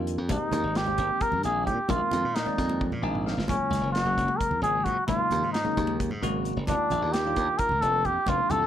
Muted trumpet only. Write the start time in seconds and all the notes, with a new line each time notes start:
0.31 D#4
0.77 G4
1.22 A#4
1.45 G#4
1.66 G4
1.90 F4
2.35 D#4
3.49 C#4
3.92 F#4
4.38 A#4
4.63 G#4
4.84 F#4
5.07 F4
5.53 D#4
6.68 D4
7.13 G4
7.59 A#4
7.82 A4
8.06 G4
8.29 F4
8.51 A4